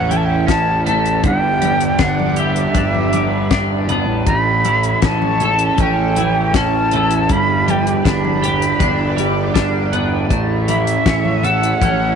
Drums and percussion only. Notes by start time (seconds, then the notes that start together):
0.11 closed hi-hat, high conga
0.48 kick, snare, closed hi-hat
0.86 closed hi-hat, low conga
1.06 closed hi-hat
1.24 kick, closed hi-hat, low conga
1.62 closed hi-hat, high conga
1.80 closed hi-hat
1.99 kick, snare, closed hi-hat, low conga
2.19 high conga
2.36 closed hi-hat
2.56 closed hi-hat
2.75 kick, closed hi-hat, high conga
2.95 high conga
3.13 closed hi-hat, high conga
3.51 kick, snare, closed hi-hat
3.89 closed hi-hat, low conga
4.27 kick, closed hi-hat
4.65 closed hi-hat, high conga
4.83 closed hi-hat
5.02 kick, snare, closed hi-hat, low conga
5.22 high conga
5.40 closed hi-hat, low conga
5.59 closed hi-hat
5.78 kick, closed hi-hat, high conga
6.16 closed hi-hat, high conga
6.54 kick, snare, closed hi-hat
6.91 closed hi-hat, low conga
7.11 closed hi-hat
7.29 kick, closed hi-hat
7.68 closed hi-hat, high conga
7.87 closed hi-hat
8.05 kick, snare, closed hi-hat, low conga
8.25 high conga
8.43 closed hi-hat, low conga
8.62 closed hi-hat
8.80 kick, closed hi-hat, high conga
9.18 closed hi-hat
9.55 kick, snare, closed hi-hat
9.93 closed hi-hat, low conga
10.30 kick, closed hi-hat
10.68 closed hi-hat, high conga
10.87 closed hi-hat
11.06 kick, snare, closed hi-hat, low conga
11.25 high conga
11.43 closed hi-hat, low conga
11.63 closed hi-hat
11.82 kick, closed hi-hat, high conga